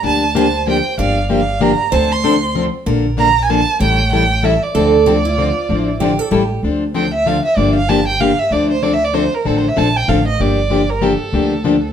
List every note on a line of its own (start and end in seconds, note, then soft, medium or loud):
0.00 0.79 D2 medium
0.00 0.23 D3 medium
0.00 0.23 F3 medium
0.00 0.31 D5 medium
0.04 0.23 A#3 medium
0.04 0.23 D4 medium
0.04 0.24 G4 medium
0.04 0.34 A5 medium
0.35 0.45 D3 medium
0.35 0.46 F3 medium
0.35 0.46 A#3 medium
0.35 0.46 D4 medium
0.35 0.46 G4 medium
0.35 0.98 C5 medium
0.35 0.66 A5 medium
0.67 0.77 D3 medium
0.67 0.77 F3 medium
0.67 0.78 A#3 medium
0.67 0.78 D4 medium
0.67 0.78 G4 medium
0.67 0.97 G5 medium
0.98 1.73 G1 medium
0.98 1.18 D3 medium
0.98 1.18 F3 medium
0.98 1.18 A#3 medium
0.98 1.18 D4 medium
0.98 1.18 G4 medium
0.98 1.92 D5 medium
0.98 1.29 F5 medium
1.29 1.40 D3 medium
1.29 1.40 F3 medium
1.29 1.40 A#3 medium
1.29 1.40 D4 medium
1.29 1.40 G4 medium
1.29 1.64 F5 medium
1.60 1.71 D3 medium
1.60 1.71 F3 medium
1.60 1.71 A#3 medium
1.60 1.71 D4 medium
1.60 1.71 G4 medium
1.60 1.95 A#5 medium
1.92 2.67 D2 medium
1.92 2.12 D3 medium
1.92 2.12 F3 medium
1.92 2.12 C4 medium
1.92 2.12 D4 medium
1.92 2.12 A4 medium
1.92 2.69 C5 medium
1.92 2.14 A5 medium
2.12 2.56 C6 medium
2.23 2.34 D3 medium
2.23 2.34 F3 medium
2.23 2.34 C4 medium
2.23 2.35 D4 medium
2.23 2.35 A4 medium
2.55 2.66 D3 medium
2.55 2.66 F3 medium
2.55 2.66 C4 medium
2.55 2.66 D4 medium
2.55 2.66 A4 medium
2.86 3.62 A#1 medium
2.86 3.06 D3 medium
2.86 3.06 F3 medium
2.86 3.06 A#3 medium
2.86 3.06 D4 medium
2.86 3.06 A4 medium
2.86 3.80 A#4 medium
3.17 3.28 D3 medium
3.17 3.28 F3 medium
3.17 3.28 A#3 medium
3.17 3.28 D4 medium
3.17 3.28 A4 medium
3.17 3.42 A#5 loud
3.44 3.51 G#5 medium
3.49 3.60 D3 medium
3.49 3.60 F3 medium
3.49 3.60 A#3 medium
3.49 3.60 D4 medium
3.49 3.60 A4 medium
3.49 3.81 A5 medium
3.80 4.55 A1 medium
3.80 4.00 E3 medium
3.80 4.00 G3 medium
3.80 4.00 C#4 medium
3.80 4.00 E4 medium
3.80 4.00 A4 medium
3.80 4.74 C#5 medium
3.80 4.11 G5 medium
4.12 4.23 E3 medium
4.12 4.23 G3 medium
4.12 4.23 C#4 medium
4.12 4.23 E4 medium
4.12 4.23 A4 medium
4.12 4.47 G5 medium
4.43 4.54 E3 medium
4.43 4.54 G3 medium
4.43 4.54 C#4 medium
4.43 4.54 E4 medium
4.43 4.54 A4 medium
4.43 4.64 E5 medium
4.63 6.32 D5 medium
4.75 5.50 D2 medium
4.75 4.95 D3 medium
4.75 4.95 F3 medium
4.75 4.95 C4 medium
4.75 4.95 D4 medium
4.75 5.06 A4 medium
4.75 4.95 A4 medium
5.06 5.17 D3 medium
5.06 5.17 F3 medium
5.06 5.17 C4 medium
5.06 5.17 D4 medium
5.06 5.11 G4 medium
5.06 5.17 A4 medium
5.25 5.78 F4 medium
5.37 5.48 D3 medium
5.37 5.48 F3 medium
5.37 5.48 C4 medium
5.37 5.48 D4 medium
5.37 5.48 A4 medium
5.69 6.19 A1 medium
5.69 5.88 D3 medium
5.69 5.89 F3 medium
5.69 5.89 C4 medium
5.69 5.89 D4 medium
5.69 5.89 A4 medium
5.78 6.03 E4 medium
6.00 6.11 D3 medium
6.00 6.11 F3 medium
6.00 6.11 C4 medium
6.00 6.11 D4 medium
6.00 6.19 G4 medium
6.00 6.11 A4 medium
6.19 6.31 A4 medium
6.31 6.56 A1 medium
6.31 6.42 E3 medium
6.31 6.42 G3 medium
6.31 6.42 C#4 medium
6.31 6.42 E4 medium
6.31 6.60 G4 medium
6.31 6.43 A4 medium
6.63 7.38 D2 medium
6.63 6.83 D3 medium
6.63 6.83 F3 medium
6.63 6.83 C4 medium
6.63 6.83 D4 medium
6.63 6.83 A4 medium
6.94 7.05 D3 medium
6.94 7.05 F3 medium
6.94 7.05 C4 medium
6.94 7.05 D4 medium
6.94 7.06 A4 medium
6.94 7.12 G5 medium
7.14 7.29 E5 medium
7.26 7.36 D3 medium
7.26 7.37 F3 medium
7.26 7.37 C4 medium
7.26 7.37 D4 medium
7.26 7.37 A4 medium
7.26 7.45 F5 medium
7.45 7.58 E5 medium
7.57 8.32 G1 medium
7.57 7.77 D3 medium
7.57 7.77 F3 medium
7.57 7.77 A#3 medium
7.57 7.77 D4 medium
7.57 7.77 G4 medium
7.57 7.75 D5 medium
7.76 7.91 F5 medium
7.89 7.99 D3 medium
7.89 7.99 F3 medium
7.89 7.99 A#3 medium
7.89 8.00 D4 medium
7.89 8.00 G4 medium
7.89 8.07 A5 medium
8.08 8.22 G5 medium
8.20 8.31 D3 medium
8.20 8.31 F3 medium
8.20 8.31 A#3 medium
8.20 8.31 D4 medium
8.20 8.31 G4 medium
8.20 8.41 F5 medium
8.39 8.54 E5 medium
8.51 9.26 D2 medium
8.51 8.71 D3 medium
8.51 8.71 F3 medium
8.51 8.71 C4 medium
8.51 8.71 D4 medium
8.51 8.72 A4 medium
8.51 8.70 D5 medium
8.71 8.84 C5 medium
8.83 8.93 D3 medium
8.83 8.93 F3 medium
8.83 8.93 C4 medium
8.83 8.93 D4 medium
8.83 8.93 A4 medium
8.83 8.95 D5 medium
8.93 9.06 E5 medium
9.04 9.15 D5 medium
9.13 9.24 D3 medium
9.13 9.24 F3 medium
9.13 9.25 C4 medium
9.13 9.24 D4 medium
9.13 9.25 A4 medium
9.13 9.36 C5 medium
9.34 9.48 A#4 medium
9.45 9.71 A1 medium
9.45 9.65 D3 medium
9.45 9.65 F3 medium
9.45 9.65 C4 medium
9.45 9.65 D4 medium
9.45 9.65 A4 medium
9.45 9.59 A4 medium
9.57 9.70 C5 medium
9.68 9.80 E5 medium
9.76 10.03 A#1 medium
9.76 9.87 D3 medium
9.76 9.87 F3 medium
9.76 9.87 C4 medium
9.76 9.87 D4 medium
9.76 9.87 A4 medium
9.76 9.98 A5 medium
9.96 10.11 G5 medium
10.08 10.35 A1 medium
10.08 10.19 D3 medium
10.08 10.19 F3 medium
10.08 10.19 C4 medium
10.08 10.19 D4 medium
10.08 10.19 A4 medium
10.08 10.27 F5 medium
10.28 10.42 D#5 medium
10.39 11.14 G1 medium
10.39 10.59 D3 medium
10.39 10.59 F3 medium
10.39 10.59 A#3 medium
10.39 10.59 D4 medium
10.39 10.60 G4 medium
10.39 10.91 D5 medium
10.70 10.81 D3 medium
10.70 10.81 F3 medium
10.70 10.81 A#3 medium
10.70 10.81 D4 medium
10.70 10.82 G4 medium
10.90 11.04 A#4 medium
11.01 11.12 D3 medium
11.01 11.12 F3 medium
11.01 11.12 A#3 medium
11.01 11.12 D4 medium
11.01 11.13 G4 medium
11.01 11.93 A4 medium
11.32 11.93 D2 medium
11.32 11.53 D3 medium
11.32 11.53 F3 medium
11.32 11.53 A#3 medium
11.32 11.53 D4 medium
11.32 11.53 G4 medium
11.64 11.75 D3 medium
11.64 11.75 F3 medium
11.64 11.75 A#3 medium
11.64 11.75 D4 medium
11.64 11.75 G4 medium